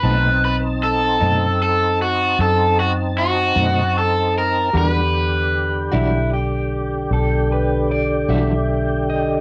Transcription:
<<
  \new Staff \with { instrumentName = "Grand piano" } { \time 12/8 \key e \minor \tempo 4. = 51 <c' dis'' a''>1. | <g' fis'' d'''>1. | }
  \new Staff \with { instrumentName = "Clean electric guitar" } { \time 12/8 \key e \minor r1. | r4. e'8 g'4 a'8 b'8 d''8 e''4 dis''8 | }
  \new Staff \with { instrumentName = "Overdriven electric guitar" } { \time 12/8 \key e \minor b'8 b'8 a'4 a'8 fis'8 a'8 fis'8 fis'4 a'8 ais'8 | b'2 r1 | }
  \new Staff \with { instrumentName = "Tonewheel organ" } { \time 12/8 \key e \minor <c' dis' a''>1. | <d g'>1. | }
  \new Staff \with { instrumentName = "Clean electric guitar" } { \time 12/8 \key e \minor <b, a c' dis'>8 r4 <b, a c' dis'>8 r2 r8 <b, a c' dis'>8 r4 | <e g d' fis'>8 r4 <e g d' fis'>8 r2 r8 <e g d' fis'>8 r4 | }
  \new Staff \with { instrumentName = "Fingered electric bass" } { \clef bass \time 12/8 \key e \minor b,,4. fis,4. fis,4. fis,4. | e,4. b,,4. b,,4. b,,4. | }
>>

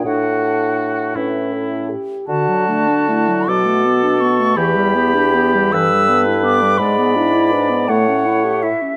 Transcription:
<<
  \new Staff \with { instrumentName = "Flute" } { \time 6/8 \key d \major \tempo 4. = 54 fis''4. r4. | a''4. d'''4 cis'''8 | b''4. e'''4 d'''8 | b''4. fis''4 e''8 | }
  \new Staff \with { instrumentName = "Oboe" } { \time 6/8 \key d \major fis'4. e'4 r8 | fis'4. a'4. | g'4. b'4. | d''4. cis''4 r8 | }
  \new Staff \with { instrumentName = "French horn" } { \time 6/8 \key d \major a'4. b'8 a'8 g'8 | fis'8 d'8 e'8 fis'4. | g'4. a'4. | gis'8 e'8 b'8 a'4 r8 | }
  \new Staff \with { instrumentName = "Clarinet" } { \time 6/8 \key d \major d'4. cis'4 r8 | d16 fis16 a16 d'16 a16 fis16 fis16 a16 b16 d'16 b16 a16 | e16 g16 b16 d'16 b16 g16 e16 g16 b16 e'16 b16 g16 | gis16 b16 d'16 e'16 d'16 b16 a16 cis'16 e'16 g'16 e'16 cis'16 | }
  \new Staff \with { instrumentName = "Bassoon" } { \clef bass \time 6/8 \key d \major a,4. a,4 r8 | d4. b,4. | e,4. g,4. | gis,4. a,4 r8 | }
>>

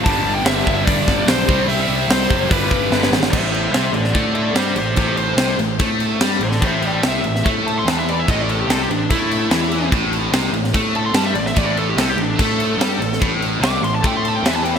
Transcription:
<<
  \new Staff \with { instrumentName = "Lead electric guitar" } { \time 4/4 \key a \minor \tempo 4 = 146 a''8. g''16 e''8 e''8 d''4 c''4 | e''4 c''4 b'4. r8 | <c'' e''>8 <c'' e''>8 <c'' e''>8 <a' d''>8 <a' d''>8 <a' d''>8 <g' c''>8 <g' c''>8 | <g' c''>8 c''4 r2 <a' d''>8 |
<c'' e''>8 <d'' g''>8 e''4 r8 a''16 c'''16 a''16 e''16 d''16 e''16 | dis''16 d''16 a'16 g'16 a'16 g'16 d'8 e'2 | r2 r8 a''16 c'''16 a''16 e''16 d''16 e''16 | d''16 d''16 a'16 g'16 a'16 g'16 d'8 a'2 |
r4 d'''8 c'''16 a''16 g''16 c'''16 a''16 g''16 e''16 a''16 g''16 e''16 | }
  \new Staff \with { instrumentName = "Distorted electric guitar" } { \clef bass \time 4/4 \key a \minor <g, d g b d'>2 <g, d g b d'>4. <c g c' e'>8~ | <c g c' e'>4. <c g c' e'>8 <g, d g b d'>2 | r1 | r1 |
r1 | r1 | r1 | r1 |
r1 | }
  \new Staff \with { instrumentName = "Distorted electric guitar" } { \clef bass \time 4/4 \key a \minor <g, d g>2.~ <g, d g>8 <c g c'>8~ | <c g c'>2 <g, d g>2 | a,4 c8 a,8 a4 g8 a,8 | a,4 c8 a,8 a4 g8 a,8 |
a,4 c8 a,8 a4 e4 | a,4 c8 a,8 a4 e4 | a,4 c8 a,8 a4 g8 a,8 | a,4 c8 a,8 a4 g8 a,8 |
a,4 c8 a,8 a4 e4 | }
  \new Staff \with { instrumentName = "Overdriven electric guitar" } { \clef bass \time 4/4 \key a \minor <g, d g>2.~ <g, d g>8 <c g c'>8~ | <c g c'>2 <g, d g>2 | a,4 c8 a,8 a4 g8 a,8 | a,4 c8 a,8 a4 g8 a,8 |
a,4 c8 a,8 a4 e4 | a,4 c8 a,8 a4 e4 | a,4 c8 a,8 a4 g8 a,8 | a,4 c8 a,8 a4 g8 a,8 |
a,4 c8 a,8 a4 e4 | }
  \new Staff \with { instrumentName = "Picked electric bass" } { \clef bass \time 4/4 \key a \minor g,,8 g,,8 g,,8 g,,8 g,,8 g,,8 b,,8 c,8 | c,8 c,8 c,8 fis,,8 g,,8 g,,8 g,,8 gis,,8 | a,,4 c,8 a,,8 a,4 g,8 a,,8 | a,,4 c,8 a,,8 a,4 g,8 a,,8 |
a,,4 c,8 a,,8 a,4 e,4 | a,,4 c,8 a,,8 a,4 e,4 | a,,4 c,8 a,,8 a,4 g,8 a,,8 | a,,4 c,8 a,,8 a,4 g,8 a,,8 |
a,,4 c,8 a,,8 a,4 e,4 | }
  \new DrumStaff \with { instrumentName = "Drums" } \drummode { \time 4/4 <hho bd>4 <hho sn>8 bd8 <hho bd>8 <bd sn>8 <hho sn>8 bd8 | hho4 <hho sn>8 bd8 <hho bd>8 bd8 sn16 sn16 sn16 sn16 | <cymc bd>8 cymc8 <cymc sn>8 cymc16 sn16 <cymc bd>8 cymc8 <cymc sn>8 cymc8 | <cymc bd>8 cymc8 <cymc sn>8 cymc8 <cymc bd>8 cymc8 <cymc sn>8 cymc16 sn16 |
<cymc bd>8 cymc8 <cymc sn>8 cymc16 sn16 <cymc bd>8 cymc8 <cymc sn>8 cymc8 | <cymc bd>8 cymc8 <cymc sn>8 cymc8 <cymc bd>8 cymc8 <cymc sn>8 cymc8 | <cymc bd>8 cymc8 <cymc sn>8 cymc16 sn16 <cymc bd>8 cymc8 <cymc sn>8 cymc16 sn16 | <cymc bd>8 cymc8 <cymc sn>8 cymc8 <cymc bd>8 cymc8 <cymc sn>8 cymc16 sn16 |
<cymc bd>8 cymc8 <cymc sn>8 cymc8 <cymc bd>8 cymc8 <cymc sn>8 cymc8 | }
>>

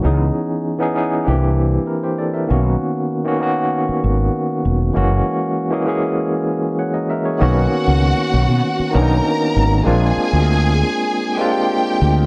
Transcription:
<<
  \new Staff \with { instrumentName = "Violin section" } { \time 4/4 \key fis \mixolydian \tempo 4 = 98 r1 | r1 | r1 | <fis' fis''>2~ <fis' fis''>8 <ais' ais''>4. |
<gis' gis''>2~ <gis' gis''>8 <g' g''>4. | }
  \new Staff \with { instrumentName = "Tine electric piano" } { \time 4/4 \key fis \mixolydian r2. <e' bes'>16 <g' c''>16 <a' d''>16 <bes' e''>16~ | <bes' e''>16 r2. r8. | r2. <cis'' fis''>16 <ais' dis''>16 <ais' e''>16 <gis' cis''>16~ | <gis' cis''>16 r2. r8. |
r1 | }
  \new Staff \with { instrumentName = "Tine electric piano" } { \time 4/4 \key fis \mixolydian <e b cis' dis' gis'>8. r8 <e b cis' dis' gis'>16 <e b cis' dis' gis'>8 <e bes c' d' g'>4. r8 | <dis ais b cis' fis'>8. r8 <dis ais b cis' fis'>16 <dis ais b cis' fis'>4. r4 | <e gis ais cis' fis'>8. r8 <e gis ais cis' gis'>16 <e gis ais cis' gis'>4. r4 | <dis ais b cis' fis'>4. r4 <dis ais b cis' d' dis'>4 r8 |
<gis ais c' d' eis'>4. r4 <gis ais c' d' eis'>4 r8 | }
  \new Staff \with { instrumentName = "Fretless electric bass" } { \clef bass \time 4/4 \key fis \mixolydian cis,8 r4. c,4 r4 | b,,8 r2 gis,,8 r8 e,,8 | fis,,8 r2. r8 | b,,8 r16 cis,8 r16 b,,16 b,16 r8 b,,8 r8 gis,,8 |
ais,,8 r16 d,4 r4. r16 d,8 | }
>>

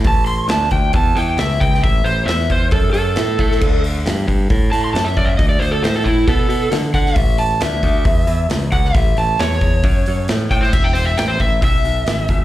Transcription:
<<
  \new Staff \with { instrumentName = "Electric slide guitar" } { \time 4/4 \key a \mixolydian \tempo 4 = 135 a''8 c'''8 a''8 g''8 a''8 g''8 e''8 g''8 | e''8 c''8 e''8 c''8 a'8 a'4.~ | a'8 r2 a''16 c'''16 a''16 e''16 d''16 e''16 | dis''16 d''16 c''16 a'16 c''16 a'16 e'8 a'4 r8 fis''8 |
e''8 a''8 e''2 r8 fis''8 | e''8 a''8 cis''2 r8 g''16 c''16 | e''16 g''16 c''16 e''16 g''16 c''16 e''8 e''2 | }
  \new Staff \with { instrumentName = "Picked electric bass" } { \clef bass \time 4/4 \key a \mixolydian a,,4 d,8 d,8 e,8 e,8 cis,8 cis,8 | a,,8 a,,8 e,8 e,8 fis,8 fis,8 a,8 a,8 | d,4 g,8 g,8 a,8 a,8 fis,8 fis,8 | d,8 d,8 a,8 a,8 b,8 b,8 d8 d8 |
a,,4 d,8 d,8 e,8 e,8 cis,8 cis,8 | a,,8 a,,8 e,8 e,8 fis,8 fis,8 a,8 a,8 | e,,4 a,,8 a,,8 b,,8 b,,8 gis,,8 gis,,8 | }
  \new DrumStaff \with { instrumentName = "Drums" } \drummode { \time 4/4 <hho bd>8 hho8 <hho sn>8 <hho bd>8 <hho bd>8 hho8 <hho sn>8 <hho bd>16 sn16 | <hho bd>8 hho8 <hho sn>16 sn16 <hho bd>8 <hho bd>8 hho8 <hho sn>8 <hho bd>16 sn16 | <cymc bd>8 hho8 <hho sn>8 <hho bd>8 <hho bd>8 hho8 <hho sn>8 <hho bd>8 | <hho bd>8 hho8 <hho sn>8 <hho bd>8 <hho bd>8 hho8 <hho sn>8 <hho bd>16 sn16 |
<hho bd>8 hho8 <hho sn>8 <hho bd>8 <hho bd>8 hho8 <hho sn>8 <hho bd>16 sn16 | <hho bd>8 hho8 <hho sn>16 sn16 <hho bd>8 <hho bd>8 hho8 <hho sn>8 <hho bd>16 sn16 | <cymc bd>8 hho8 <hho sn>8 <hho bd>8 <hho bd>8 hho8 <hho sn>8 <hho bd>8 | }
>>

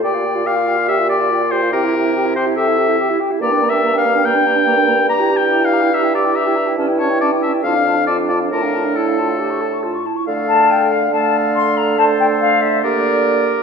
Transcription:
<<
  \new Staff \with { instrumentName = "Flute" } { \time 4/4 \key c \mixolydian \tempo 4 = 142 g''16 f''16 g''16 f''16 g''16 f''16 g''16 f''16 g''16 f''16 g''16 f''16 g''16 f''16 g''16 f''16 | g''16 e''16 g''16 e''16 g''16 e''16 g''16 e''16 g''16 e''16 g''16 e''16 g''16 e''16 g''16 e''16 | \key d \minor bes''16 g''16 bes''16 g''16 bes''16 g''16 bes''16 g''16 bes''16 g''16 bes''16 g''16 bes''16 g''16 bes''16 g''16 | bes''16 g''16 bes''16 g''16 bes''16 g''16 bes''16 g''16 bes''16 g''16 bes''16 g''16 bes''16 g''16 bes''16 g''16 |
a''16 g''16 a''16 g''16 a''16 g''16 a''16 g''16 a''16 f''16 a''16 f''16 a''16 f''16 a''16 f''16 | a''16 f''16 a''16 f''16 a''16 f''16 a''16 f''16 a''16 cis'''16 a''16 cis'''16 a''16 cis'''16 a''16 cis'''16 | f''8 a''8 g''8 f''8 a''4 c'''8 bes''8 | a''8 g''8 f''8 e''8 d''4. r8 | }
  \new Staff \with { instrumentName = "Oboe" } { \time 4/4 \key c \mixolydian d''4 f''4 e''8 d''4 c''8 | bes'4. c''8 e''4. r8 | \key d \minor \tuplet 3/2 { d''4 e''8~ e''8 f''4 } g''2 | \tuplet 3/2 { bes''4 g''8~ g''8 f''4 } e''8 d''8 e''4 |
r8 cis''8 d''8 e''8 f''4 d''8 d''8 | bes'4 a'2 r4 | f''2 f''2 | c''2 bes'2 | }
  \new Staff \with { instrumentName = "French horn" } { \time 4/4 \key c \mixolydian g'4 f'4 g'4 f'4 | e'4 g'4 a'4 g'4 | \key d \minor bes'2~ bes'8 r8 bes'4 | g'4 e'4 g'2 |
e'2 d'4 f'4 | d'2.~ d'8 r8 | a2 a2 | a2 bes2 | }
  \new Staff \with { instrumentName = "Clarinet" } { \time 4/4 \key c \mixolydian g'16 f'16 g'16 f'16 g'16 f'16 g'16 f'16 g'16 f'16 g'16 f'16 g'16 f'16 g'16 f'16 | g'16 e'16 g'16 e'16 g'16 e'16 g'16 e'16 g'16 e'16 g'16 e'16 g'16 e'16 g'16 e'16 | \key d \minor bes16 d'16 bes16 d'16 bes16 d'16 bes16 d'16 bes16 d'16 bes16 d'16 bes16 d'16 bes16 d'16 | g'16 e'16 g'16 e'16 g'16 e'16 g'16 e'16 g'16 e'16 g'16 e'16 g'16 e'16 g'16 e'16 |
cis'16 e'16 cis'16 e'16 cis'16 e'16 cis'16 e'16 f'16 d'16 f'16 d'16 f'16 d'16 f'16 d'16 | f'16 d'16 f'16 d'16 e'8 f'8 g'8 a'8 f'8 e'8 | a'2 a'2 | a'2 g'2 | }
  \new Staff \with { instrumentName = "Bassoon" } { \clef bass \time 4/4 \key c \mixolydian bes,1 | c2.~ c8 r8 | \key d \minor g,1~ | g,1 |
g,2 f,2 | a,2.~ a,8 r8 | d1~ | d1 | }
>>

